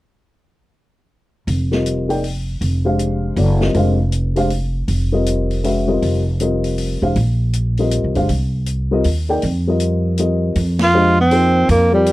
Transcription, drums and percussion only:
1.48 open hi-hat
1.72 snare
1.86 closed hi-hat
2.10 open hi-hat
2.24 open hi-hat
2.61 open hi-hat
2.99 closed hi-hat
3.37 open hi-hat
3.61 snare
3.74 open hi-hat
4.12 closed hi-hat
4.36 open hi-hat
4.50 open hi-hat
4.88 open hi-hat
5.26 closed hi-hat
5.51 open hi-hat
5.64 open hi-hat
6.02 open hi-hat
6.40 closed hi-hat
6.64 open hi-hat
6.78 open hi-hat
7.16 open hi-hat
7.53 closed hi-hat
7.77 open hi-hat
7.91 closed hi-hat
8.15 open hi-hat
8.29 open hi-hat
8.66 closed hi-hat
9.04 open hi-hat
9.42 open hi-hat
9.80 closed hi-hat
10.18 closed hi-hat
10.55 open hi-hat
10.79 snare, ride
11.31 open hi-hat
11.69 open hi-hat
12.06 closed hi-hat

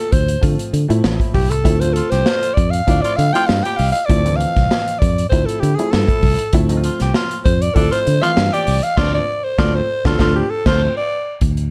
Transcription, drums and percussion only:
0.12 kick, closed hi-hat
0.28 closed hi-hat
0.43 kick, closed hi-hat
0.59 closed hi-hat
0.74 closed hi-hat
0.90 closed hi-hat
1.04 snare
1.20 kick, closed hi-hat
1.35 kick, open hi-hat
1.51 closed hi-hat
1.65 kick, closed hi-hat
1.81 closed hi-hat
1.96 closed hi-hat
2.12 snare, closed hi-hat
2.26 snare
2.43 closed hi-hat
2.57 kick, closed hi-hat
2.73 closed hi-hat
2.88 kick, closed hi-hat
3.04 closed hi-hat
3.19 closed hi-hat
3.35 closed hi-hat
3.49 snare
3.65 closed hi-hat
3.79 open hi-hat
3.95 closed hi-hat
4.10 kick, closed hi-hat
4.26 closed hi-hat
4.40 closed hi-hat
4.56 kick, snare, closed hi-hat
4.71 snare
4.88 closed hi-hat
5.02 kick, closed hi-hat
5.18 closed hi-hat
5.32 kick, closed hi-hat
5.49 closed hi-hat
5.63 closed hi-hat
5.79 closed hi-hat
5.93 snare
6.08 kick, closed hi-hat
6.23 kick, open hi-hat
6.39 closed hi-hat
6.53 kick, closed hi-hat
6.69 closed hi-hat
6.84 closed hi-hat
7.00 snare, closed hi-hat
7.14 snare
7.31 closed hi-hat
7.46 kick, closed hi-hat
7.62 closed hi-hat
7.76 kick, closed hi-hat
7.92 closed hi-hat
8.07 closed hi-hat
8.23 closed hi-hat
8.37 snare
8.54 closed hi-hat
8.67 open hi-hat
8.83 closed hi-hat
8.98 kick, snare, crash
9.58 kick, snare
10.05 kick, snare
10.19 kick, snare
10.66 kick, snare, crash
11.41 kick, closed hi-hat
11.57 closed hi-hat

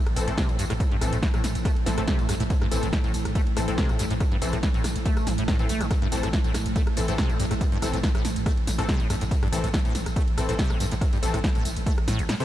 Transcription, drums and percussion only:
0.06 cross-stick, ride
0.16 open hi-hat, ride, tambourine
0.28 closed hi-hat, ride
0.38 kick, cross-stick, snare, closed hi-hat, ride, tambourine
0.49 ride, tambourine
0.59 open hi-hat, ride, tambourine
0.70 cross-stick, closed hi-hat, ride, tambourine
0.80 kick, closed hi-hat, ride, tambourine
0.91 ride
1.01 cross-stick, open hi-hat, ride, tambourine
1.13 closed hi-hat, ride, tambourine
1.23 kick, snare, closed hi-hat, ride, tambourine
1.34 cross-stick, ride, tambourine
1.44 snare, open hi-hat, ride, tambourine
1.55 closed hi-hat, ride, tambourine
1.65 kick, cross-stick, closed hi-hat, ride, tambourine
1.76 ride
1.86 snare, open hi-hat, ride, tambourine
1.98 cross-stick, closed hi-hat, ride, tambourine
2.08 kick, snare, closed hi-hat, ride, tambourine
2.19 ride, tambourine
2.29 cross-stick, open hi-hat, ride, tambourine
2.40 closed hi-hat, ride, tambourine
2.50 kick, closed hi-hat, ride, tambourine
2.61 cross-stick, ride
2.71 open hi-hat, ride, tambourine
2.83 closed hi-hat, ride, tambourine
2.93 kick, cross-stick, snare, closed hi-hat, ride, tambourine
3.04 ride, tambourine
3.14 open hi-hat, ride, tambourine
3.25 cross-stick, closed hi-hat, ride, tambourine
3.35 kick, closed hi-hat, ride, tambourine
3.47 ride
3.57 cross-stick, open hi-hat, ride, tambourine
3.68 closed hi-hat, ride, tambourine
3.78 kick, snare, closed hi-hat, ride, tambourine
3.89 cross-stick, ride, tambourine
3.99 open hi-hat, ride, tambourine
4.11 closed hi-hat, ride, tambourine
4.20 kick, cross-stick, closed hi-hat, ride, tambourine
4.32 ride
4.42 open hi-hat, ride, tambourine
4.53 cross-stick, closed hi-hat, ride, tambourine
4.63 kick, snare, closed hi-hat, ride, tambourine
4.74 ride, tambourine
4.84 cross-stick, snare, open hi-hat, ride, tambourine
4.96 closed hi-hat, ride, tambourine
5.06 kick, closed hi-hat, ride, tambourine
5.17 cross-stick, ride, tambourine
5.27 snare, open hi-hat, ride, tambourine
5.38 closed hi-hat, ride, tambourine
5.48 kick, cross-stick, snare, closed hi-hat, ride, tambourine
5.59 ride, tambourine
5.69 open hi-hat, ride, tambourine
5.81 cross-stick, closed hi-hat, ride, tambourine
5.91 kick, cross-stick, closed hi-hat, ride, tambourine
6.02 ride
6.12 open hi-hat, ride, tambourine
6.23 cross-stick, closed hi-hat, ride, tambourine
6.33 kick, snare, closed hi-hat, ride, tambourine
6.44 ride, tambourine
6.54 cross-stick, snare, open hi-hat, ride, tambourine
6.66 closed hi-hat, ride, tambourine
6.76 kick, closed hi-hat, ride, tambourine
6.87 cross-stick, ride
6.97 open hi-hat, ride, tambourine
7.08 closed hi-hat, ride, tambourine
7.18 kick, cross-stick, snare, closed hi-hat, ride, tambourine
7.30 ride, tambourine
7.40 open hi-hat, ride, tambourine
7.51 cross-stick, closed hi-hat, ride, tambourine
7.61 kick, closed hi-hat, ride, tambourine
7.72 ride
7.82 cross-stick, open hi-hat, ride, tambourine
7.94 closed hi-hat, ride, tambourine
8.03 kick, snare, closed hi-hat, ride, tambourine
8.15 cross-stick, ride, tambourine
8.25 snare, open hi-hat, ride, tambourine
8.36 closed hi-hat, ride, tambourine
8.46 kick, cross-stick, closed hi-hat, ride, tambourine
8.57 ride
8.67 snare, open hi-hat, ride, tambourine
8.79 cross-stick, closed hi-hat, ride, tambourine
8.89 kick, snare, closed hi-hat, ride, tambourine
9.00 ride, tambourine
9.10 cross-stick, open hi-hat, ride, tambourine
9.21 closed hi-hat, ride, tambourine
9.31 kick, closed hi-hat, ride, tambourine
9.43 cross-stick, ride
9.53 open hi-hat, ride, tambourine
9.64 closed hi-hat, ride, tambourine
9.74 kick, cross-stick, snare, closed hi-hat, ride, tambourine
9.85 ride, tambourine
9.95 snare, open hi-hat, ride, tambourine
10.06 cross-stick, closed hi-hat, ride, tambourine
10.16 kick, closed hi-hat, ride, tambourine
10.28 ride
10.38 cross-stick, open hi-hat, ride, tambourine
10.49 closed hi-hat, ride, tambourine
10.59 kick, snare, closed hi-hat, ride, tambourine
10.70 cross-stick, ride, tambourine
10.80 open hi-hat, ride, tambourine
10.91 closed hi-hat, ride, tambourine
11.01 kick, cross-stick, closed hi-hat, ride, tambourine
11.13 ride, tambourine
11.23 open hi-hat, ride, tambourine
11.34 cross-stick, closed hi-hat, ride, tambourine
11.44 kick, snare, closed hi-hat, ride, tambourine
11.55 ride, tambourine
11.65 open hi-hat, ride, tambourine
11.77 closed hi-hat, ride, tambourine
11.86 kick, closed hi-hat, ride, tambourine
11.98 cross-stick, ride
12.08 snare, open hi-hat, ride, tambourine
12.19 closed hi-hat, ride, tambourine
12.29 cross-stick, snare, closed hi-hat, ride, tambourine
12.40 ride, tambourine

